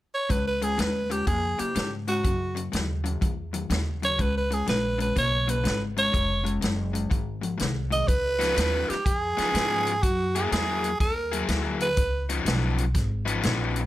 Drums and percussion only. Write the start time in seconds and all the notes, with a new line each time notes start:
0.30 kick, closed hi-hat
0.62 closed hi-hat
0.79 snare, closed hi-hat
1.11 closed hi-hat
1.27 kick, closed hi-hat
1.59 closed hi-hat
1.76 snare, closed hi-hat
2.08 closed hi-hat
2.24 kick, closed hi-hat
2.57 closed hi-hat
2.73 snare, closed hi-hat
3.05 closed hi-hat
3.22 kick, closed hi-hat
3.54 closed hi-hat
3.70 snare, closed hi-hat
4.03 closed hi-hat
4.19 kick, closed hi-hat
4.51 closed hi-hat
4.67 snare, closed hi-hat
5.00 closed hi-hat
5.16 kick, closed hi-hat
5.49 closed hi-hat
5.65 snare, closed hi-hat
5.97 closed hi-hat
6.14 kick, closed hi-hat
6.46 closed hi-hat
6.62 snare, closed hi-hat
6.95 closed hi-hat
7.11 kick, closed hi-hat
7.43 closed hi-hat
7.59 snare, closed hi-hat
7.92 closed hi-hat
8.08 kick, closed hi-hat
8.41 snare, closed hi-hat
8.57 snare, closed hi-hat
8.90 snare, closed hi-hat
9.06 kick, closed hi-hat
9.38 snare, closed hi-hat
9.55 snare, closed hi-hat
9.87 closed hi-hat
10.03 kick, closed hi-hat
10.35 closed hi-hat
10.52 snare, closed hi-hat
10.84 closed hi-hat
11.00 kick, snare, closed hi-hat
11.33 closed hi-hat
11.48 snare, closed hi-hat
11.80 closed hi-hat
11.97 kick, closed hi-hat
12.29 closed hi-hat
12.46 snare, closed hi-hat
12.78 closed hi-hat
12.95 kick, snare, closed hi-hat
13.27 closed hi-hat
13.43 snare, closed hi-hat
13.76 closed hi-hat